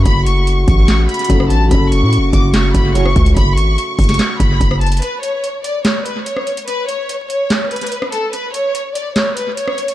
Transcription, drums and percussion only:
0.05 kick, closed hi-hat
0.26 closed hi-hat
0.47 closed hi-hat
0.68 kick, closed hi-hat
0.88 snare, clap, closed hi-hat
1.09 closed hi-hat
1.14 closed hi-hat
1.19 closed hi-hat
1.24 closed hi-hat
1.30 kick, closed hi-hat
1.40 cross-stick
1.50 closed hi-hat
1.71 kick, closed hi-hat
1.92 closed hi-hat
2.13 closed hi-hat
2.33 kick, closed hi-hat
2.54 snare, clap, closed hi-hat
2.74 kick, closed hi-hat
2.95 closed hi-hat
3.06 cross-stick
3.16 kick, closed hi-hat
3.26 closed hi-hat
3.36 kick, closed hi-hat
3.57 closed hi-hat
3.78 closed hi-hat
3.99 kick, closed hi-hat, open hi-hat
4.04 closed hi-hat
4.09 snare, closed hi-hat
4.14 closed hi-hat
4.19 snare, clap, closed hi-hat
4.40 kick, closed hi-hat
4.61 kick, closed hi-hat
4.71 cross-stick
4.81 closed hi-hat, open hi-hat
4.87 closed hi-hat
4.92 closed hi-hat
4.97 closed hi-hat
5.02 closed hi-hat
5.23 closed hi-hat
5.44 closed hi-hat
5.64 closed hi-hat
5.85 snare, clap, closed hi-hat
6.06 closed hi-hat
6.26 closed hi-hat
6.37 cross-stick
6.47 closed hi-hat
6.57 closed hi-hat
6.68 closed hi-hat
6.89 closed hi-hat
7.09 closed hi-hat
7.30 closed hi-hat
7.50 snare, clap, closed hi-hat
7.71 closed hi-hat
7.76 closed hi-hat
7.81 closed hi-hat
7.87 closed hi-hat
7.92 closed hi-hat
8.02 cross-stick
8.12 closed hi-hat
8.33 closed hi-hat
8.54 closed hi-hat
8.75 closed hi-hat
8.95 closed hi-hat
9.16 snare, clap, closed hi-hat
9.37 closed hi-hat
9.57 closed hi-hat
9.68 cross-stick
9.78 closed hi-hat
9.88 closed hi-hat

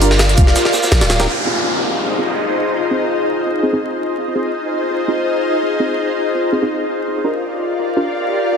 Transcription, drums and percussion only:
0.01 closed hi-hat, shaker
0.11 snare
0.19 snare, closed hi-hat, shaker
0.29 snare, closed hi-hat
0.37 kick, closed hi-hat, shaker
0.47 snare
0.56 snare, closed hi-hat, shaker
0.65 snare
0.73 snare, shaker
0.83 snare, shaker
0.92 snare, closed hi-hat
1.01 snare, closed hi-hat
1.10 snare, closed hi-hat, shaker
1.20 snare, closed hi-hat

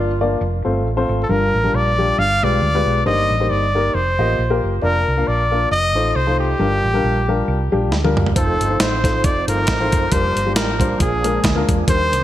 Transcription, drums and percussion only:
7.92 snare
8.05 high tom
8.17 mid tom
8.26 floor tom
8.36 kick, closed hi-hat
8.61 closed hi-hat
8.80 snare, closed hi-hat
9.04 kick, snare, closed hi-hat
9.24 kick, closed hi-hat
9.48 closed hi-hat
9.67 kick, snare, closed hi-hat
9.92 kick, closed hi-hat
10.12 kick, closed hi-hat
10.37 closed hi-hat
10.56 snare, closed hi-hat
10.80 kick, closed hi-hat
11.00 kick, closed hi-hat
11.24 closed hi-hat
11.44 kick, snare, closed hi-hat
11.69 kick, closed hi-hat
11.88 kick, closed hi-hat
12.13 closed hi-hat

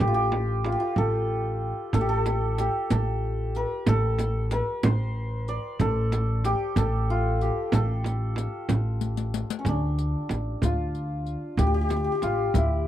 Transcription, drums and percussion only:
0.00 frame drum
0.32 frame drum
0.65 frame drum
0.96 frame drum
1.93 riq, frame drum
2.26 riq, frame drum
2.58 riq, frame drum
2.90 riq, frame drum
3.55 riq
3.86 riq, frame drum
4.19 riq, frame drum
4.51 riq, frame drum
4.83 riq, frame drum
5.48 riq
5.79 riq, frame drum
6.12 riq, frame drum
6.45 riq, frame drum
6.76 riq, frame drum
7.41 riq
7.72 riq, frame drum
8.04 riq, frame drum
8.36 riq, frame drum
8.69 riq, frame drum
9.01 riq
9.17 riq
9.34 riq
9.50 riq
9.65 riq, frame drum
9.99 riq
10.29 riq, frame drum
10.62 riq, frame drum
10.95 riq
11.26 riq
11.57 riq, frame drum
11.90 riq, frame drum
12.22 riq, frame drum
12.54 riq, frame drum

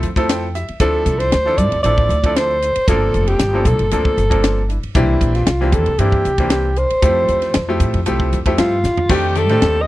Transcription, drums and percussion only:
0.03 hi-hat pedal, ride
0.16 kick, ride
0.29 snare, hi-hat pedal, ride
0.55 snare, hi-hat pedal, ride
0.68 ride
0.80 kick, hi-hat pedal, ride
1.06 kick, hi-hat pedal, ride
1.20 snare, ride
1.32 snare, hi-hat pedal, ride
1.46 snare
1.58 kick, hi-hat pedal, ride
1.72 ride
1.84 hi-hat pedal, ride
1.98 kick
2.10 hi-hat pedal, ride
2.24 kick, ride
2.36 snare, hi-hat pedal, ride
2.62 hi-hat pedal, ride
2.76 ride
2.88 kick, hi-hat pedal, ride
3.14 hi-hat pedal, ride
3.27 ride
3.39 snare, hi-hat pedal, ride
3.65 kick, hi-hat pedal, ride
3.79 ride
3.91 hi-hat pedal, ride
4.05 kick
4.18 hi-hat pedal, ride
4.31 kick, ride
4.44 snare, hi-hat pedal, ride
4.70 hi-hat pedal, ride
4.83 ride
4.95 kick, hi-hat pedal, ride
5.21 kick, hi-hat pedal, ride
5.35 snare, ride
5.47 snare, hi-hat pedal, ride
5.60 snare
5.72 kick, hi-hat pedal, ride
5.86 ride
5.99 hi-hat pedal, ride
6.12 kick
6.25 hi-hat pedal, ride
6.38 kick, ride
6.50 snare, hi-hat pedal, ride
6.76 hi-hat pedal, ride
6.90 ride
7.02 kick, hi-hat pedal, ride
7.29 hi-hat pedal, ride
7.42 snare, ride
7.54 snare, hi-hat pedal, ride
7.80 kick, hi-hat pedal, ride
7.94 ride
8.06 hi-hat pedal, ride
8.20 kick
8.33 hi-hat pedal, ride
8.46 kick, ride
8.58 snare, hi-hat pedal, ride
8.84 snare, hi-hat pedal
8.97 floor tom
9.09 kick, crash
9.35 hi-hat pedal, ride
9.49 snare, ride
9.62 snare, ride

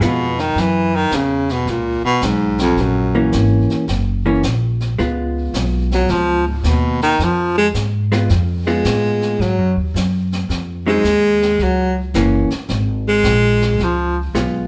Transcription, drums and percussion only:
0.01 snare, hi-hat pedal
0.39 snare
0.57 brush sweep, snare
1.11 snare, hi-hat pedal
1.49 snare
1.67 brush sweep, snare
2.21 snare, hi-hat pedal
2.58 snare
2.77 brush sweep, snare
3.32 snare, hi-hat pedal
3.70 snare
3.88 brush sweep, snare
4.43 snare, hi-hat pedal
4.80 snare
4.99 brush sweep, snare
5.54 snare, hi-hat pedal
5.91 snare
6.08 brush sweep, snare
6.64 snare, hi-hat pedal
7.01 snare
7.19 brush sweep, snare
7.74 snare, hi-hat pedal
8.12 snare
8.29 brush sweep, snare
8.66 snare
8.84 snare, hi-hat pedal
9.22 snare
9.41 brush sweep, snare
9.96 snare, hi-hat pedal
10.32 snare
10.50 brush sweep, snare
11.04 snare, hi-hat pedal
11.42 snare
11.59 brush sweep, snare
12.14 snare, hi-hat pedal
12.50 snare
12.68 brush sweep, snare
13.23 snare, hi-hat pedal
13.61 snare
13.79 brush sweep, snare
14.35 snare, hi-hat pedal

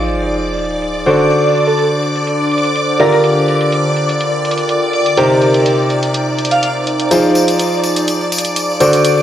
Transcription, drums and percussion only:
0.09 closed hi-hat
0.22 closed hi-hat
0.34 closed hi-hat
0.58 closed hi-hat
0.64 closed hi-hat
0.71 closed hi-hat
0.82 closed hi-hat
1.06 closed hi-hat
1.19 closed hi-hat
1.30 closed hi-hat
1.55 closed hi-hat
1.67 closed hi-hat
1.79 closed hi-hat
2.03 closed hi-hat
2.16 closed hi-hat
2.27 closed hi-hat
2.51 closed hi-hat
2.58 closed hi-hat
2.64 closed hi-hat
2.76 closed hi-hat
3.00 closed hi-hat
3.12 closed hi-hat
3.24 closed hi-hat
3.48 closed hi-hat
3.61 closed hi-hat
3.72 closed hi-hat
3.96 closed hi-hat
4.09 closed hi-hat
4.21 closed hi-hat
4.45 closed hi-hat
4.51 closed hi-hat
4.58 closed hi-hat
4.69 closed hi-hat
4.93 closed hi-hat
5.06 closed hi-hat
5.17 closed hi-hat
5.42 closed hi-hat
5.54 closed hi-hat
5.66 closed hi-hat
5.90 closed hi-hat
6.03 closed hi-hat
6.14 closed hi-hat
6.39 closed hi-hat
6.45 closed hi-hat
6.51 closed hi-hat
6.63 closed hi-hat
6.87 closed hi-hat
7.00 closed hi-hat
7.11 closed hi-hat, tambourine
7.24 tambourine
7.35 closed hi-hat, tambourine
7.48 closed hi-hat, tambourine
7.59 closed hi-hat, tambourine
7.72 tambourine
7.83 closed hi-hat, tambourine
7.96 closed hi-hat, tambourine
8.07 closed hi-hat, tambourine
8.21 tambourine
8.32 closed hi-hat, tambourine
8.38 closed hi-hat
8.44 closed hi-hat, tambourine
8.56 closed hi-hat, tambourine
8.69 tambourine
8.80 closed hi-hat, tambourine
8.93 closed hi-hat, tambourine
9.04 closed hi-hat, tambourine
9.17 tambourine

